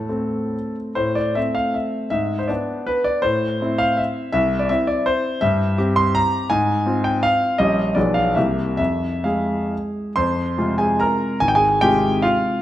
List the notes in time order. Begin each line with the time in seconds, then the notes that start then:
Already playing: A2 A4
0.09 A3 C4
0.95 A2 C5
1.15 D5
1.35 A3 C4 E5
1.55 F5
1.74 E5
2.10 G#2 E5
2.39 C5
2.48 B3 D4 D5
2.87 B4
3.04 D5
3.22 A2 C5
3.61 C4 E4
3.78 F5
3.97 E5
4.32 C2 E5
4.59 D5
4.69 C4 E4 E5
4.87 D5
5.06 C5
5.41 G2 E5
5.78 C4 G4
5.96 C6
6.15 A#5
6.50 G#2 G#5
6.86 C4 F4
7.04 G5
7.23 F5
7.58 A#1 G3 C#4 G4 D#5
7.95 B1 F3 B3 G#4 D5
8.14 F5
8.35 C2 C3 A#3 G4 E5
8.77 F2 E5
9.24 G#3 G#4 F5
10.16 F2 C5 C6
10.58 C3 G#3 F4
10.78 G#4 G#5
11.00 A#4 A#5
11.40 G#1 G#5
11.48 G5
11.55 G#4 G#5
11.81 C3 G#3 F4 G4 G5
12.22 F4 F5